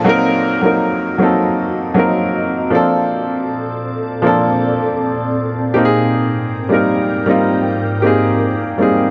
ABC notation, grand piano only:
X:1
M:4/4
L:1/16
Q:1/4=79
K:Bb
V:1 name="Grand piano"
[_G,B,CEB]2 z [G,B,CEB]2 z [G,B,CEA]3 z [G,B,CEB]3 z [F,B,CDA]2- | [F,B,CDA]4 z2 [F,B,CDA]6 z2 [B,CEG_A]2- | [B,CEG_A]2 z [G,B,CEB]2 z [G,B,CEF]3 z [B,CEGA]3 z [G,B,CEA] z |]